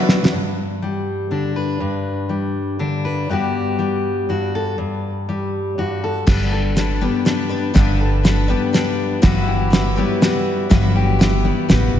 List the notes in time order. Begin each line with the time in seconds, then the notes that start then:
Already playing: G1 G2 F#3 G3 B3 D4 E4 F#4 B4 E5
0.09 snare
0.25 snare
0.32 G2
0.82 G3
1.31 D3 D4
1.56 B4
1.80 G2
2.29 G3
2.79 D3 D4
3.05 B4
3.29 G2 G3 B3 F#4 G4
3.79 G3
4.29 G2 F#4
4.55 A4
4.78 G2
5.29 G3
5.78 G2 F#4
6.04 A4
6.26 G1 G2 D3 G3 B3 D4 B4, kick, snare, crash
6.52 A4
6.76 G3 B3 D4 B4, snare, closed hi-hat
7.01 G3 B3 D4 B4
7.25 G3 B3 D4 B4, snare, closed hi-hat
7.49 G3 B3 D4 B4
7.74 G1 G2 D3 G3 B3 D4 B4, kick, snare, closed hi-hat
8.01 A4
8.23 G3 B3 D4 B4, snare, closed hi-hat
8.48 G3 B3 D4 B4
8.73 G3 B3 D4 B4, snare, closed hi-hat
9.22 G1 G2 E3 F#3 B3 E4 F#4 B4, kick, snare, closed hi-hat
9.47 G4
9.70 F#3 B3 E4 B4, snare, closed hi-hat
9.96 F#3 G3 B3 E4 B4
10.21 B3 E4 F#4 B4, snare, closed hi-hat
10.70 G1 G2 E3 F#3 B3 E4 F#4 B4, kick, snare, closed hi-hat
10.95 G4
11.19 B3 E4 B4, snare, closed hi-hat
11.44 G3 B3
11.68 A1 B3 E4 F#4 B4, snare, closed hi-hat
11.94 B1